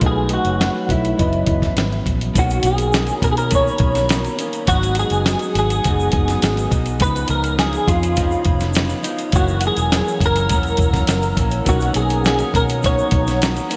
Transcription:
0.00 fingered electric bass B1, clean electric guitar B2 F#3 A3 D#4, synth keys A3 D#4 F#4, kalimba B4, kick, closed hi-hat
0.04 clean electric guitar G#4, synth keys A4
0.11 synth keys B4
0.29 clean electric guitar F#3 A3 D#4, closed hi-hat
0.33 clean electric guitar F#4
0.45 fingered electric bass F#1, kalimba C#5, closed hi-hat
0.61 snare, closed hi-hat
0.89 fingered electric bass B1, clean electric guitar E4, kalimba B4, kick, closed hi-hat
1.05 closed hi-hat
1.16 fingered electric bass F#1, clean electric guitar F#2 E3, synth keys F#3 C#4 E4, kalimba D#5, kick, closed hi-hat
1.20 clean electric guitar B3 C#4, synth keys B4
1.33 closed hi-hat
1.46 fingered electric bass F#1, kalimba E5, kick, closed hi-hat
1.62 kick, snare, closed hi-hat
1.77 fingered electric bass G#1, snare, closed hi-hat
1.93 closed hi-hat
2.06 fingered electric bass A#1, kick, closed hi-hat
2.21 closed hi-hat
2.34 fingered electric bass B1, clean electric guitar B2 D#3 A#3 C#4, ambient pad C#5 A#5 B5 D#6, kick, closed hi-hat, shaker
2.39 clean electric guitar F#4
2.50 closed hi-hat, shaker
2.63 fingered electric bass B1, clean electric guitar G#4, closed hi-hat, shaker
2.78 closed hi-hat, shaker
2.92 snare, closed hi-hat, shaker
3.07 closed hi-hat, shaker
3.22 fingered electric bass B2, clean electric guitar A#4, kick, closed hi-hat, shaker
3.31 clean electric guitar G#4
3.37 clean electric guitar A#4, closed hi-hat, shaker
3.50 clean electric guitar B2 D#3 A#3 C#4, kick, closed hi-hat, shaker
3.55 clean electric guitar C#5
3.67 shaker
3.78 fingered electric bass B1, kick, closed hi-hat
3.95 snare, closed hi-hat, shaker
4.09 snare, closed hi-hat, shaker
4.24 closed hi-hat, shaker
4.39 clean electric guitar D#3 A#3 C#4, closed hi-hat, shaker
4.53 closed hi-hat, shaker
4.67 fingered electric bass G#1, clean electric guitar G#2 F#3 B3 F#4, ambient pad B4 F#5 G#5, kick, closed hi-hat, shaker
4.72 clean electric guitar D#4
4.83 closed hi-hat, shaker
4.95 closed hi-hat, shaker
4.99 clean electric guitar G#4
5.10 fingered electric bass F#1, closed hi-hat, shaker
5.26 snare, closed hi-hat, shaker
5.39 closed hi-hat, shaker
5.55 fingered electric bass G#1, clean electric guitar G#4, closed hi-hat, shaker
5.70 closed hi-hat, shaker
5.84 fingered electric bass F#1, clean electric guitar G#2 F#3 B3 D#4, kick, closed hi-hat, shaker
6.00 shaker
6.12 fingered electric bass F#1, kick, closed hi-hat
6.28 snare, closed hi-hat, shaker
6.42 fingered electric bass G#1, snare, closed hi-hat, shaker
6.57 closed hi-hat, shaker
6.71 fingered electric bass B1, clean electric guitar F#3 B3 D#4, kick, closed hi-hat, shaker
6.86 closed hi-hat, shaker
7.00 fingered electric bass C#2, clean electric guitar C#3 F3 B3 B4, ambient pad C#5 F5 B5, kick, closed hi-hat, shaker
7.04 clean electric guitar D#4
7.16 closed hi-hat, shaker
7.28 fingered electric bass C#2, clean electric guitar A#4, closed hi-hat, shaker
7.44 closed hi-hat, shaker
7.59 clean electric guitar G#4, snare, closed hi-hat, shaker
7.73 closed hi-hat, shaker
7.88 fingered electric bass F2, clean electric guitar F4, kick, closed hi-hat, shaker
8.03 closed hi-hat, shaker
8.16 clean electric guitar C#3 F3 B3 D#4, kick, closed hi-hat, shaker
8.31 shaker
8.45 fingered electric bass F1, kick, closed hi-hat
8.60 snare, closed hi-hat, shaker
8.73 snare, closed hi-hat, shaker
8.89 closed hi-hat, shaker
9.03 clean electric guitar F3 B3 D#4, closed hi-hat, shaker
9.18 closed hi-hat, shaker
9.32 fingered electric bass F#1, clean electric guitar F#2 E3 A#3 F#4, ambient pad F#5 A#5 E6, kick, closed hi-hat, shaker
9.36 clean electric guitar C#4
9.48 shaker
9.61 closed hi-hat, shaker
9.67 clean electric guitar G#4
9.77 fingered electric bass E1, closed hi-hat, shaker
9.92 snare, closed hi-hat, shaker
10.08 shaker
10.20 fingered electric bass F#1, kick, closed hi-hat, shaker
10.26 clean electric guitar A#4
10.36 closed hi-hat, shaker
10.49 fingered electric bass E1, clean electric guitar F#2 E3 A#3 C#4, kick, closed hi-hat, shaker
10.63 closed hi-hat, shaker
10.77 fingered electric bass E1, kick, closed hi-hat, shaker
10.93 kick, snare, closed hi-hat, shaker
11.07 fingered electric bass F#1, snare, closed hi-hat, shaker
11.22 closed hi-hat, shaker
11.37 fingered electric bass A#1, clean electric guitar E3 A#3 C#4, kick, closed hi-hat, shaker
11.51 closed hi-hat, shaker
11.65 fingered electric bass B1, clean electric guitar B2 D#3 A#3 F#4, synth keys F#3 B3 C#4 D#4, ambient pad C#5 F#5 D#6, kick, closed hi-hat, shaker
11.69 clean electric guitar C#4, synth keys A#4
11.80 closed hi-hat, shaker
11.94 fingered electric bass B1, clean electric guitar G#4, closed hi-hat, shaker
12.10 closed hi-hat, shaker
12.25 clean electric guitar G#4, snare, closed hi-hat, shaker
12.39 closed hi-hat, shaker
12.54 fingered electric bass B2, clean electric guitar A#4, kick, closed hi-hat, shaker
12.69 closed hi-hat, shaker
12.82 clean electric guitar B2 D#3 A#3 C#4 C#5, kick, closed hi-hat, shaker
12.98 shaker
13.11 fingered electric bass B1, kick, closed hi-hat
13.27 snare, closed hi-hat, shaker
13.42 snare, closed hi-hat, shaker
13.57 closed hi-hat, shaker
13.69 clean electric guitar D#3 A#3 C#4, closed hi-hat, shaker

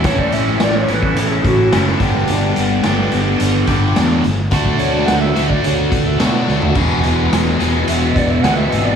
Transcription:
0.04 fingered electric bass A1, overdriven electric guitar A2 E3 A3 C#4 E4, woodwind section C#5, kick, closed hi-hat
0.19 woodwind section D5, kick
0.32 fingered electric bass A1, woodwind section E5, closed hi-hat
0.47 snare
0.60 fingered electric bass A1, woodwind section D5, snare, closed hi-hat
0.75 woodwind section C#5
0.88 fingered electric bass A1, overdriven electric guitar A2 E3 A3 C#4 E4, woodwind section B4, closed hi-hat
1.03 kick
1.16 fingered electric bass A1, woodwind section A4, closed hi-hat
1.32 woodwind section G#4
1.44 fingered electric bass A1, woodwind section F#4, kick, closed hi-hat
1.72 fingered electric bass F#1, overdriven electric guitar A2 E3 A3 C#4 E4, woodwind section E4, snare, closed hi-hat
1.88 woodwind section D4
2.00 fingered electric bass G1, overdriven electric guitar G2 D3 G3 B3 D4 G4, kick, snare, closed hi-hat
2.15 snare
2.27 fingered electric bass G1, closed hi-hat
2.56 fingered electric bass G1, closed hi-hat
2.83 fingered electric bass G1, overdriven electric guitar G2 D3 G3 B3 D4 G4, snare, closed hi-hat
3.11 fingered electric bass G1, closed hi-hat
3.40 fingered electric bass G1, closed hi-hat
3.67 fingered electric bass G1, overdriven electric guitar G2 D3 G3 B3 D4 G4, kick, closed hi-hat
3.96 fingered electric bass E2, snare, closed hi-hat
4.24 fingered electric bass G1, snare, closed hi-hat
4.51 fingered electric bass D2, overdriven electric guitar D3 A3 D4 F#4, woodwind section D5, kick, closed hi-hat
4.66 kick
4.78 fingered electric bass D2, woodwind section C#5, closed hi-hat
4.92 woodwind section D5, snare
5.05 fingered electric bass D2, woodwind section F#5, snare, closed hi-hat
5.20 woodwind section E5
5.36 fingered electric bass D2, overdriven electric guitar D3 A3 D4 F#4, snare, closed hi-hat
5.48 woodwind section D5, kick
5.63 fingered electric bass D2, woodwind section C#5, closed hi-hat
5.90 fingered electric bass D2, woodwind section D5, kick, closed hi-hat
6.05 woodwind section E5
6.19 fingered electric bass B2, overdriven electric guitar D3 A3 D4 F#4, snare, closed hi-hat
6.48 fingered electric bass D2, snare
6.62 floor tom
6.75 fingered electric bass E1, overdriven electric guitar E2 B2 E3 G#3 B3 G#4, kick, crash
7.03 fingered electric bass E1, closed hi-hat
7.33 fingered electric bass E1, snare, closed hi-hat
7.46 snare
7.59 fingered electric bass E1, overdriven electric guitar E2 B2 E3 G#3 B3 G#4, closed hi-hat
7.88 fingered electric bass E1, woodwind section E5, closed hi-hat
8.16 fingered electric bass E1, woodwind section D5, kick, closed hi-hat
8.29 woodwind section E5
8.42 fingered electric bass D2, overdriven electric guitar E2 B2 E3 G#3 B3 G#4, woodwind section F#5, snare, closed hi-hat
8.56 woodwind section E5
8.72 fingered electric bass G#1, closed hi-hat
8.84 woodwind section D5

